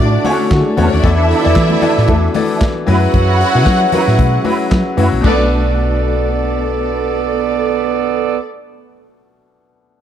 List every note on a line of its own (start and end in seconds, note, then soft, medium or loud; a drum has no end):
0.00 0.17 A2 loud
0.00 0.24 D3 medium
0.00 1.02 D3 medium
0.00 0.25 A3 medium
0.00 0.74 A3 medium
0.00 1.00 A3 medium
0.00 0.44 D4 loud
0.00 1.02 D4 medium
0.00 1.02 E4 medium
0.00 1.06 F4 medium
0.00 0.25 F#4 medium
0.00 0.74 F#4 medium
0.00 1.02 F#4 medium
0.00 0.44 D5 loud
0.00 0.74 D5 medium
0.00 1.04 D5 medium
0.00 0.20 E5 loud
0.14 muted clean electric guitar stroke soft
0.24 0.72 D3 medium
0.24 0.72 A3 medium
0.24 0.46 C#4 medium
0.24 0.72 F#4 medium
0.24 0.39 F#4 medium
0.24 0.39 A4 medium
0.24 0.72 C#5 loud
0.24 open hi-hat medium
0.24 high conga medium
0.40 muted clean electric guitar stroke soft
0.51 0.62 D3 loud
0.51 0.60 F#3 medium
0.51 0.60 F#4 medium
0.51 kick loud
0.51 snare loud
0.51 clap medium
0.51 closed hi-hat medium
0.51 muted conga soft
0.60 0.69 G#3 medium
0.60 0.69 G#4 medium
0.66 0.78 A3 medium
0.66 0.78 A4 medium
0.66 muted clean electric guitar stroke soft
0.77 0.88 E2 loud
0.77 1.01 D3 medium
0.77 1.01 A3 medium
0.77 0.87 B3 medium
0.77 0.98 C#4 medium
0.77 1.01 F#4 medium
0.77 0.92 F#4 medium
0.77 0.91 A4 medium
0.77 0.87 B4 medium
0.77 1.02 C#5 loud
0.77 open hi-hat medium
0.77 muted conga soft
0.77 high conga medium
0.77 low conga medium
0.87 0.95 C#4 medium
0.87 0.95 C#5 loud
0.93 1.01 D#2 medium
0.93 1.04 D4 medium
0.93 1.04 D5 loud
0.93 muted clean electric guitar stroke medium
1.03 1.32 E2 loud
1.03 1.39 E3 medium
1.03 2.86 E3 medium
1.03 2.86 B3 medium
1.03 1.39 B3 medium
1.03 2.58 B3 medium
1.03 2.86 D4 medium
1.03 2.58 E4 loud
1.03 2.86 F#4 medium
1.03 2.58 A4 loud
1.03 2.86 A4 loud
1.03 1.40 A4 medium
1.03 2.58 D5 loud
1.03 1.40 D5 medium
1.03 2.59 E5 loud
1.03 muted clean electric guitar stroke soft
1.03 kick loud
1.03 closed hi-hat medium
1.03 muted conga soft
1.17 1.28 D4 medium
1.17 1.28 E4 medium
1.17 1.29 A4 medium
1.29 1.46 D4 medium
1.29 1.44 E4 medium
1.29 1.43 A4 medium
1.29 open hi-hat medium
1.44 1.53 E2 loud
1.44 1.78 E3 medium
1.44 1.78 B3 medium
1.44 1.78 A4 medium
1.44 1.79 D5 medium
1.44 muted clean electric guitar stroke soft
1.56 1.74 E3 loud
1.56 kick loud
1.56 snare loud
1.56 clap medium
1.56 closed hi-hat medium
1.56 muted conga soft
1.70 high conga medium
1.80 2.29 E3 loud
1.80 2.29 B3 medium
1.80 2.02 D4 medium
1.80 1.95 E4 medium
1.80 1.94 A4 medium
1.80 2.29 A4 medium
1.80 2.30 D5 loud
1.80 open hi-hat medium
1.80 low conga medium
1.96 2.06 A2 medium
1.96 muted clean electric guitar stroke medium
1.96 snare soft
2.08 2.27 E2 loud
2.08 2.29 D4 medium
2.08 2.23 E4 loud
2.08 2.22 A4 loud
2.08 kick loud
2.08 closed hi-hat medium
2.08 muted conga soft
2.08 high conga medium
2.23 muted clean electric guitar stroke soft
2.34 2.82 E3 medium
2.34 2.82 B3 medium
2.34 2.83 A4 medium
2.34 2.83 D5 medium
2.34 muted clean electric guitar stroke soft
2.34 open hi-hat medium
2.34 muted conga soft
2.34 high conga medium
2.49 2.64 D4 medium
2.49 2.64 E4 medium
2.49 2.64 A4 medium
2.61 kick loud
2.61 snare loud
2.61 clap loud
2.61 closed hi-hat medium
2.61 muted conga soft
2.76 muted clean electric guitar stroke medium
2.86 3.06 F#2 medium
2.86 3.46 F#3 medium
2.86 4.94 F#3 medium
2.86 5.06 F#3 medium
2.86 3.46 C#4 medium
2.86 5.06 C#4 medium
2.86 3.08 E4 medium
2.86 5.06 E4 medium
2.86 3.46 E4 medium
2.86 4.94 E4 medium
2.86 3.02 F#4 medium
2.86 4.95 F#4 loud
2.86 5.06 G#4 medium
2.86 3.01 B4 medium
2.86 5.06 B4 medium
2.86 3.46 B4 loud
2.86 4.94 C#5 loud
2.86 4.94 F#5 loud
2.86 open hi-hat medium
2.86 high conga medium
2.86 low conga medium
3.02 muted clean electric guitar stroke medium
3.14 3.42 F#2 loud
3.14 muted clean electric guitar stroke soft
3.14 kick loud
3.14 closed hi-hat medium
3.14 muted conga soft
3.14 low conga medium
3.29 3.39 E4 medium
3.29 3.40 F#4 loud
3.29 3.40 B4 medium
3.40 3.57 E4 medium
3.40 3.55 F#4 medium
3.40 3.54 B4 medium
3.40 open hi-hat medium
3.54 3.67 B2 medium
3.54 3.88 F#3 medium
3.54 3.89 C#4 medium
3.54 3.89 E4 medium
3.54 3.89 B4 medium
3.54 muted clean electric guitar stroke soft
3.66 3.85 F#3 loud
3.66 kick loud
3.66 snare loud
3.66 clap medium
3.66 closed hi-hat medium
3.82 muted clean electric guitar stroke soft
3.92 4.40 F#3 medium
3.92 4.40 C#4 medium
3.92 4.14 E4 medium
3.92 4.40 E4 medium
3.92 4.07 F#4 medium
3.92 4.40 B4 loud
3.92 4.07 B4 loud
3.92 open hi-hat medium
3.92 muted conga soft
3.92 low conga medium
4.08 4.19 A2 medium
4.08 muted clean electric guitar stroke soft
4.08 snare soft
4.19 4.37 B2 medium
4.19 kick loud
4.19 closed hi-hat medium
4.19 muted conga soft
4.19 high conga medium
4.34 muted clean electric guitar stroke soft
4.44 4.92 F#3 medium
4.44 4.92 C#4 medium
4.44 4.66 E4 medium
4.44 4.92 E4 medium
4.44 4.59 F#4 medium
4.44 4.58 B4 medium
4.44 4.93 B4 medium
4.44 open hi-hat medium
4.44 high conga medium
4.59 muted clean electric guitar stroke soft
4.71 4.82 F#3 loud
4.71 kick loud
4.71 snare loud
4.71 clap loud
4.71 closed hi-hat medium
4.85 muted clean electric guitar stroke soft
4.97 5.08 F#2 medium
4.97 5.21 F#3 medium
4.97 5.22 C#4 medium
4.97 5.18 E4 loud
4.97 5.22 E4 medium
4.97 5.10 F#4 medium
4.97 5.22 F#4 loud
4.97 5.10 B4 loud
4.97 open hi-hat medium
4.97 high conga medium
4.97 low conga medium
5.11 5.20 A#1 medium
5.11 muted clean electric guitar stroke soft
5.21 8.38 B1 loud
5.21 8.35 B2 medium
5.21 8.38 B2 medium
5.21 8.71 A3 medium
5.21 8.37 A3 medium
5.21 8.37 B3 medium
5.21 8.38 B3 medium
5.21 8.37 D4 medium
5.21 8.74 D4 medium
5.21 8.37 A4 medium
5.21 8.38 A4 medium
5.21 8.37 D5 medium
5.21 8.38 D5 medium
5.21 kick loud
5.21 crash medium
5.21 high conga medium
5.25 8.39 B3 medium
5.25 8.39 D4 medium
5.25 8.76 F#4 loud
5.25 8.39 A4 medium
5.25 8.41 B4 medium
5.25 8.39 D5 medium